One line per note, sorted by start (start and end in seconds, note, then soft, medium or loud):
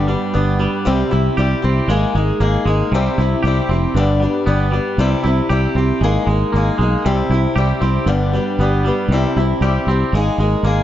0.00 0.15 G1 medium
0.00 0.86 G2 medium
0.08 0.32 G3 soft
0.08 0.33 B3 medium
0.08 0.34 D4 medium
0.08 0.34 G4 medium
0.34 0.66 G1 medium
0.34 0.60 G3 medium
0.34 0.59 B3 medium
0.34 0.60 D4 medium
0.34 0.58 G4 medium
0.59 0.85 G3 soft
0.59 0.86 B3 soft
0.59 0.86 D4 soft
0.59 0.85 G4 medium
0.85 1.02 C2 medium
0.85 1.11 C3 medium
0.85 1.12 G3 medium
0.85 1.12 C4 medium
0.85 1.11 E4 medium
0.85 1.10 G4 medium
1.11 1.28 C2 medium
1.11 1.38 C4 soft
1.11 1.38 E4 medium
1.11 1.37 G4 medium
1.38 1.53 C2 medium
1.38 1.64 G3 medium
1.38 1.63 C4 medium
1.38 1.62 E4 medium
1.38 1.61 G4 medium
1.62 1.79 C2 medium
1.62 1.90 C4 soft
1.62 1.89 E4 soft
1.62 1.89 G4 medium
1.88 2.04 G#1 medium
1.88 2.15 G#3 medium
1.88 2.15 A#3 medium
1.88 2.16 D#4 medium
1.88 2.14 G#4 medium
2.15 2.30 G#1 medium
2.15 2.64 G#3 medium
2.15 2.40 A#3 soft
2.15 2.40 D#4 medium
2.15 2.41 G#4 medium
2.40 2.56 G#1 medium
2.40 2.66 G#3 medium
2.40 2.67 A#3 medium
2.40 2.67 D#4 medium
2.40 2.66 G#4 medium
2.65 2.81 G#1 medium
2.65 2.92 G#3 medium
2.65 2.93 D#4 medium
2.65 2.93 G#4 medium
2.69 2.94 A#3 soft
2.92 3.07 C2 medium
2.92 3.19 C3 medium
2.92 3.19 G3 medium
2.92 3.19 C4 medium
2.92 3.18 G4 medium
2.96 3.19 E4 medium
3.18 3.34 C2 medium
3.18 3.45 C4 soft
3.18 3.45 E4 soft
3.18 3.44 G4 medium
3.43 3.59 C2 medium
3.43 3.70 G3 medium
3.43 3.71 C4 medium
3.43 3.95 G4 medium
3.47 3.71 E4 medium
3.47 3.70 G4 medium
3.69 3.85 F1 medium
3.69 3.95 C4 medium
3.69 3.96 G4 medium
3.73 3.97 C4 soft
3.73 3.97 E4 soft
3.95 4.26 G1 medium
3.95 4.22 G2 medium
3.95 4.22 D3 medium
3.95 4.22 G3 medium
3.95 4.22 B3 medium
3.95 4.22 D4 medium
3.95 4.21 G4 medium
4.20 4.71 G3 medium
4.20 4.47 B3 soft
4.20 4.47 D4 medium
4.20 4.47 G4 medium
4.25 4.46 G3 soft
4.47 4.78 G1 medium
4.47 4.73 G3 medium
4.47 4.73 B3 medium
4.47 4.73 D4 medium
4.47 4.72 G4 medium
4.73 4.98 G3 soft
4.73 4.99 B3 soft
4.73 4.99 D4 medium
4.73 4.99 G4 medium
4.98 5.14 C2 medium
4.98 5.24 C3 medium
4.98 5.25 G3 medium
4.98 5.25 C4 medium
4.98 5.24 E4 medium
4.98 5.22 G4 medium
5.24 5.40 C2 medium
5.24 5.50 C4 soft
5.24 5.50 E4 soft
5.24 5.50 G4 medium
5.50 5.66 C2 medium
5.50 5.76 G3 medium
5.50 5.76 C4 medium
5.50 5.77 E4 medium
5.50 5.77 G4 medium
5.75 5.91 C2 medium
5.75 6.03 E4 soft
5.75 6.02 G4 medium
5.79 6.03 C4 soft
6.01 6.17 G#1 medium
6.01 6.28 G#3 medium
6.01 6.28 A#3 medium
6.01 6.29 D#4 medium
6.01 6.28 G#4 medium
6.27 6.43 G#1 medium
6.27 6.77 G#3 medium
6.27 6.54 D#4 medium
6.27 6.54 G#4 medium
6.31 6.55 A#3 soft
6.54 6.69 G#1 medium
6.54 6.80 G#3 medium
6.54 6.80 A#3 medium
6.54 6.80 D#4 medium
6.54 6.80 G#4 medium
6.78 6.94 B1 medium
6.78 7.04 G#3 medium
6.78 7.06 G#4 soft
6.82 7.05 A#3 soft
6.82 7.06 D#4 medium
7.06 7.21 C2 medium
7.06 7.31 C3 medium
7.06 7.31 G3 medium
7.06 7.31 C4 medium
7.06 7.31 E4 medium
7.06 7.31 G4 medium
7.30 7.45 C2 medium
7.30 7.57 G4 medium
7.34 7.57 C4 soft
7.34 7.57 E4 medium
7.56 7.71 C2 medium
7.56 7.82 G3 medium
7.56 7.82 C4 medium
7.56 7.81 E4 medium
7.56 8.07 G4 medium
7.60 7.80 G4 medium
7.81 7.97 C2 medium
7.81 8.08 C4 soft
7.81 8.08 E4 soft
7.81 8.07 G4 medium
8.06 8.38 G1 medium
8.06 8.33 G2 medium
8.06 8.33 D3 medium
8.06 8.33 G3 medium
8.06 8.34 B3 medium
8.06 8.33 D4 medium
8.06 8.32 G4 medium
8.33 8.59 G3 soft
8.33 8.60 B3 medium
8.33 8.60 D4 medium
8.33 8.59 G4 medium
8.59 8.90 G1 medium
8.59 8.85 G3 medium
8.59 8.86 B3 medium
8.59 8.86 D4 medium
8.59 8.84 G4 medium
8.86 9.11 G3 soft
8.86 9.12 B3 soft
8.86 9.12 D4 soft
8.86 9.11 G4 medium
9.08 9.25 C2 medium
9.08 9.37 C3 medium
9.08 9.37 G3 medium
9.13 9.37 C4 medium
9.13 9.38 E4 medium
9.13 9.36 G4 medium
9.36 9.52 C2 medium
9.36 9.62 C4 soft
9.36 9.63 E4 soft
9.36 9.63 G4 medium
9.61 9.77 C2 medium
9.61 9.88 G3 medium
9.61 9.88 C4 medium
9.61 9.89 E4 medium
9.65 9.88 G4 medium
9.87 10.03 C2 medium
9.87 10.15 E4 soft
9.87 10.14 G4 medium
9.91 10.15 C4 medium
10.13 10.29 G#1 loud
10.13 10.40 G#3 medium
10.13 10.40 A#3 medium
10.17 10.39 D#4 medium
10.17 10.39 G#4 medium
10.38 10.54 G#1 medium
10.38 10.83 G#3 medium
10.38 10.64 D#4 medium
10.38 10.65 G#4 medium
10.43 10.65 A#3 soft
10.63 10.79 G#1 medium
10.63 10.83 G#3 medium
10.63 10.83 A#3 medium
10.63 10.83 D#4 medium
10.63 10.83 G#4 medium